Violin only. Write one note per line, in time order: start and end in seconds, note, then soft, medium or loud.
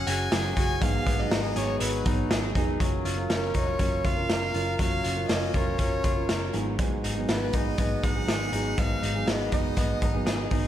0.07 0.56 G#5 medium
0.56 0.83 G#5 loud
0.82 1.21 F5 medium
1.20 1.58 D#5 medium
1.57 1.80 C#5 medium
1.81 2.27 B4 medium
3.30 3.56 A#4 medium
3.55 4.07 C#5 medium
4.05 4.78 F5 medium
4.79 5.26 F5 medium
5.29 5.56 D#5 medium
5.55 6.54 C#5 medium
7.29 7.56 B4 medium
7.54 8.05 D#5 loud
8.04 8.80 F#5 loud
8.79 9.30 F5 medium
9.28 9.52 D#5 medium
9.53 10.48 D#5 medium